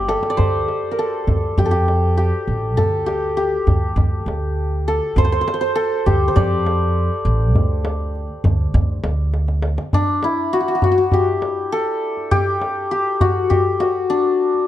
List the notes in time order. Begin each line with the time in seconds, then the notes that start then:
Already playing: G1 G4 C5 D5
0.09 A4, tombak tek
0.23 tombak ka
0.30 D5
0.37 D2 C5, tombak dum
0.68 tombak tek
0.83 tombak ka
0.91 A#4
0.99 A4
1.27 D2, tombak dum
1.58 F2 G4, tombak dum
1.66 A4
1.71 G4, tombak ka
1.88 tombak tek
2.17 G4
2.48 A1, tombak ka
2.77 D2 A4, tombak dum
3.06 G4, tombak tek
3.23 tombak ka
3.37 G4
3.67 D2, tombak dum
3.96 D2, tombak dum
4.12 tombak ka
4.26 D2, tombak tek
4.88 A4
5.16 D2 C5, tombak dum
5.25 C5
5.32 C5
5.41 C5
5.47 C5, tombak tek
5.54 C5
5.61 C5, tombak ka
5.75 A4
6.06 D2 G4, tombak dum
6.28 C5
6.36 F2 D5, tombak dum
6.52 tombak ka
6.67 tombak tek
7.25 A1, tombak ka
7.54 D2, tombak dum
7.85 tombak tek
8.01 tombak ka
8.15 tombak ka
8.44 D2, tombak dum
8.74 D2, tombak dum
8.89 tombak ka
9.04 D2, tombak tek
9.34 tombak tek
9.48 tombak ka
9.62 tombak tek
9.78 tombak ka
9.93 D4, tombak dum
10.23 E4, tombak tek
10.53 F#4, tombak ka
10.60 F#4
10.68 F#4
10.75 F#4
10.82 F#4, tombak dum
10.92 F#4
10.98 F#4
11.12 G4, tombak dum
11.28 tombak ka
11.42 tombak tek
11.72 A4, tombak ka
12.17 tombak ka
12.31 G4, tombak dum
12.62 tombak tek
12.91 G4, tombak ka
13.21 F#4, tombak dum
13.50 G4, tombak dum
13.66 tombak ka
13.80 F#4, tombak tek
14.10 D4, tombak ka
14.55 tombak ka